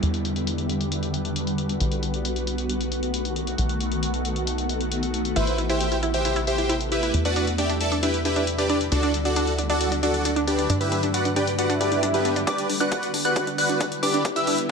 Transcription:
Already playing: D3 G3 B3, downlifter
0.03 E2 F#4, closed hi-hat
0.14 closed hi-hat
0.25 closed hi-hat
0.36 closed hi-hat
0.47 closed hi-hat
0.58 closed hi-hat
0.69 closed hi-hat
0.81 closed hi-hat
0.92 closed hi-hat
1.03 closed hi-hat
1.14 closed hi-hat
1.25 closed hi-hat
1.36 closed hi-hat
1.47 closed hi-hat
1.58 closed hi-hat
1.69 closed hi-hat
1.80 B1 D#3 A3 F#4, closed hi-hat
1.92 closed hi-hat
2.03 closed hi-hat
2.14 closed hi-hat
2.25 closed hi-hat
2.36 closed hi-hat
2.47 closed hi-hat
2.58 closed hi-hat
2.69 closed hi-hat
2.81 closed hi-hat
2.92 closed hi-hat
3.03 closed hi-hat
3.14 closed hi-hat
3.25 closed hi-hat
3.36 closed hi-hat
3.47 closed hi-hat
3.58 B1, closed hi-hat
3.69 closed hi-hat
3.81 closed hi-hat
3.92 closed hi-hat
4.03 closed hi-hat
4.14 closed hi-hat
4.25 closed hi-hat
4.36 closed hi-hat
4.47 closed hi-hat
4.58 closed hi-hat
4.69 closed hi-hat
4.81 closed hi-hat
4.92 closed hi-hat
5.03 closed hi-hat
5.14 closed hi-hat
5.25 closed hi-hat
5.36 A1 C3 A3 E4 B4 C5 E5, closed hi-hat
5.47 closed hi-hat
5.58 E4, closed hi-hat
5.69 E4 G4 C5 E5 G5, closed hi-hat
5.81 closed hi-hat
5.92 E4, closed hi-hat
6.03 E4, closed hi-hat
6.14 G4 C5 E5 G5, closed hi-hat
6.25 E4, closed hi-hat
6.36 E4, closed hi-hat
6.47 G4 C5 E5 G5, closed hi-hat
6.58 E4, closed hi-hat
6.69 E4, closed hi-hat
6.81 closed hi-hat
6.92 E4 G4 B4 E5, closed hi-hat
7.03 E4, closed hi-hat
7.14 E2 D3 G3, closed hi-hat
7.25 D4 F#4 B4 D5 F#5, closed hi-hat
7.36 D4, closed hi-hat
7.47 closed hi-hat
7.58 D4 G4 D5 E5 G5, closed hi-hat
7.69 D4, closed hi-hat
7.81 A4 D5 E5 A5, closed hi-hat
7.92 D4, closed hi-hat
8.03 D4 E4 G4 B4 E5, closed hi-hat
8.14 closed hi-hat
8.25 D4 E4 G4 B4 E5, closed hi-hat
8.36 D4, closed hi-hat
8.47 closed hi-hat
8.58 D4 G4 B4 D5, closed hi-hat
8.70 D4, closed hi-hat
8.81 closed hi-hat
8.92 D2 F#3 A3 D4 F#4 A4 D5, closed hi-hat
9.03 D4, closed hi-hat
9.14 closed hi-hat
9.25 D4 F#4 A4 D5 F#5, closed hi-hat
9.36 D4, closed hi-hat
9.47 closed hi-hat
9.58 D4, closed hi-hat
9.70 D4 F#4 A4 D5 F#5, closed hi-hat
9.81 closed hi-hat
9.92 D4, closed hi-hat
10.03 D4 F#4 A4 D5 F#5, closed hi-hat
10.14 closed hi-hat
10.25 D4, closed hi-hat
10.36 D4, closed hi-hat
10.47 D4 G4 B4 D5, closed hi-hat
10.58 D4, closed hi-hat
10.70 G2 G3 B3 D4 G4, closed hi-hat
10.80 E4 G4 B4 E5, closed hi-hat
10.92 D4, closed hi-hat
11.03 D4, closed hi-hat
11.14 F#4 B4 D5 F#5, closed hi-hat
11.25 D4, closed hi-hat
11.36 D4 G4 B4 D5 G5, closed hi-hat
11.47 closed hi-hat
11.58 D4 F#4 B4 D5 F#5, closed hi-hat, swell
11.70 D4, closed hi-hat
11.81 D4 G4 B4 D5, closed hi-hat
11.92 D4, closed hi-hat
12.03 D4, closed hi-hat
12.14 B3 D4 G4 B4, closed hi-hat
12.25 D4, closed hi-hat
12.36 D4, closed hi-hat
12.47 D3 G3 B3 D4 E4 G4 B4 D5 D6, kick, closed hi-hat
12.58 closed hi-hat
12.69 D4, open hi-hat
12.80 D4 F#4 B4 D5 F#5 F#6, closed hi-hat
12.92 kick, closed hi-hat
13.03 D4, closed hi-hat
13.14 D4, open hi-hat
13.25 F#4 B4 D5 F#5 F#6, closed hi-hat
13.36 D4, kick, closed hi-hat
13.47 D4, closed hi-hat
13.58 F#4 B4 D5 F#5 F#6, open hi-hat
13.69 D4, closed hi-hat
13.80 D4, kick, closed hi-hat
13.92 closed hi-hat
14.03 D4 G4 B4 D5 D6, open hi-hat
14.14 D4, closed hi-hat
14.25 kick, closed hi-hat
14.36 D4 E4 G4 B4 E5 E6, closed hi-hat
14.47 D4, open hi-hat
14.58 closed hi-hat

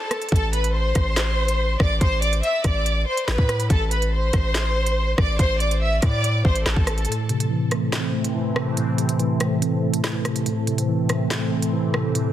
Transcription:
Already playing: A4 A5
0.11 cross-stick, closed hi-hat
0.22 closed hi-hat
0.29 A1 A4, kick, closed hi-hat
0.33 A5, closed hi-hat
0.53 B4 B5, closed hi-hat
0.64 closed hi-hat
0.75 C5 C6
0.95 A1, kick, cross-stick, closed hi-hat
1.17 snare, clap, closed hi-hat
1.48 closed hi-hat
1.80 A1 D5 D6, kick, cross-stick
2.01 A1 C5 C6, kick, closed hi-hat
2.22 D5 D6, closed hi-hat
2.33 closed hi-hat
2.43 E5 E6, closed hi-hat
2.64 A1 D5 D6, kick, cross-stick, closed hi-hat
2.86 closed hi-hat
3.07 C5 C6
3.17 closed hi-hat
3.28 A1 B4 B5, snare, clap
3.38 A2, kick
3.49 cross-stick, closed hi-hat
3.60 closed hi-hat
3.70 A1 A4 A5, kick, closed hi-hat
3.91 B4 B5, closed hi-hat
4.02 closed hi-hat
4.13 C5 C6
4.33 A1, kick, cross-stick, closed hi-hat
4.55 snare, clap, closed hi-hat
4.86 closed hi-hat
5.18 A1 D5 D6, kick, cross-stick
5.39 A1 C5 C6, kick, closed hi-hat
5.60 D5 D6, closed hi-hat
5.71 closed hi-hat
5.82 E5 E6
6.02 A2 D5 D6, kick, cross-stick, closed hi-hat
6.24 closed hi-hat
6.45 A1 C5 C6, kick
6.56 closed hi-hat
6.66 A1 A4 A5, snare, clap
6.76 A1, kick
6.87 cross-stick, closed hi-hat
6.98 closed hi-hat
7.05 A2 E3 A3 C4 A4, closed hi-hat
7.12 closed hi-hat
7.29 C3, closed hi-hat
7.40 closed hi-hat
7.50 E3
7.71 A3, cross-stick, closed hi-hat
7.93 C4, snare, clap, closed hi-hat
8.14 A3
8.24 closed hi-hat
8.35 E3
8.56 C3, cross-stick
8.77 A2, closed hi-hat
8.98 C3, closed hi-hat
9.09 closed hi-hat
9.19 E3, closed hi-hat
9.40 A3, cross-stick, closed hi-hat
9.61 C4, closed hi-hat
9.83 A3
9.94 closed hi-hat
10.04 E3, snare, clap
10.25 C3, cross-stick, closed hi-hat
10.36 closed hi-hat
10.46 A2 E3 C4, closed hi-hat
10.67 C3, closed hi-hat
10.78 closed hi-hat
10.88 E3
11.09 A3, cross-stick, closed hi-hat
11.31 C4, snare, clap, closed hi-hat
11.52 A3
11.62 closed hi-hat
11.73 E3
11.94 C3, cross-stick
12.15 A2, closed hi-hat

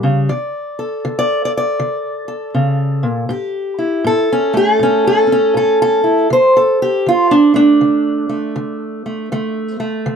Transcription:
Already playing: G3
0.03 C#3
0.29 D3 D5
0.79 A4
1.05 D3
1.19 D5
1.45 D5
1.57 D5
1.79 D3
2.28 A4
2.54 C#3
3.03 A#2
3.29 A2 G4
3.79 E4
4.04 A2 A4
4.32 C#4
4.53 A3 G#4
4.74 A4
4.79 A2 C#4
5.07 A4
5.27 C#4
5.32 C#4
5.54 A2 A4
5.82 A4
6.04 E4
6.30 D3 C5
6.57 A4
6.82 G4
7.06 D3 F4
7.31 D4
7.54 A3 D4
7.81 D3
8.29 A3
8.56 D3
9.06 A3
9.32 D3 A3
9.80 A3
10.06 D3

